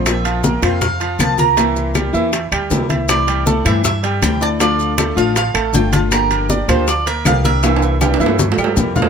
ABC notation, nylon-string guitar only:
X:1
M:4/4
L:1/8
Q:1/4=158
K:Cmix
V:1 name="Nylon-string guitar"
[F,B,CF]2 [F,B,CF] [B,CF] z2 [F,B,CF] [B,CF] | [C,E,B,CE]2 [E,B,CE] [E,B,CE] z2 [C,E,B,CE] [B,CE] | [C,E,A,CE]2 [E,A,CE] [E,A,CE] z2 [C,E,A,CE] [A,CE] | [D,A,DF]2 [D,A,DF] [A,DF] z2 [D,A,DF] [A,DF] |
[D,F,B,DG]2 [F,B,DG] [F,B,DG] z2 [D,F,B,DG] [B,DG] | [C,E,B,CE]2 [E,B,CE] [E,B,CE] z2 [C,E,B,CE] [B,CE] |]